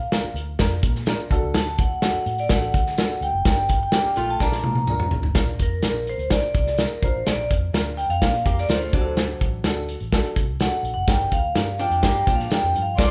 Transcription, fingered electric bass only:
0.24 muted fingered electric bass stroke
0.34 D2
0.59 F2
0.83 A#2
1.30 D2
1.43 C#2
1.55 D2
2.14 muted fingered electric bass stroke
2.26 A2
2.50 A1
2.74 D3
3.21 D2
3.33 F#1
3.46 G1
4.05 muted fingered electric bass stroke
4.17 A#1
4.40 A#1
4.64 A#2
4.88 D2
5.12 A#1
5.24 G1
5.35 A#1
5.59 F2
5.83 A#1
6.18 D2
6.43 muted fingered electric bass stroke
6.55 C2
7.02 A#1
7.15 A1
7.27 A#1
7.51 F2
7.74 D2
8.09 F2
8.22 A#2
8.46 F2
8.69 D2
8.93 D2
9.41 A1
9.64 D2
10.01 A1
10.24 muted fingered electric bass stroke
10.36 C2
10.83 A#1
10.95 F#1
11.08 G1
11.32 D2
11.55 G2
11.90 F2
12.03 G2
12.27 A#2
12.51 muted fingered electric bass stroke
12.63 F2
12.76 G2
12.98 A#1

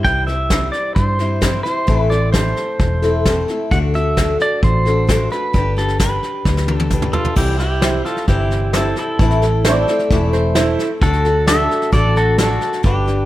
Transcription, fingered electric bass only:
0.05 C2
0.96 G2
1.88 A1
2.80 E1
3.72 D2
4.63 A1
5.55 G1
6.45 D2
7.37 C2
8.28 G1
9.20 A1
10.11 E1
11.02 D2
11.92 A1
12.84 G1

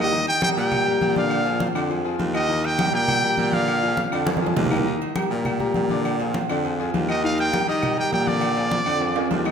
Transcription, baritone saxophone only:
Already playing: D#2
0.57 A#2
1.00 A#2
1.75 F2
2.19 D#2
2.93 A#2
3.37 A#2
4.12 F2
4.56 D#2
5.30 A#2
5.75 A#2
6.49 F2
6.93 D#2
7.67 D#3
8.12 A#2
8.86 F2
9.30 D#2

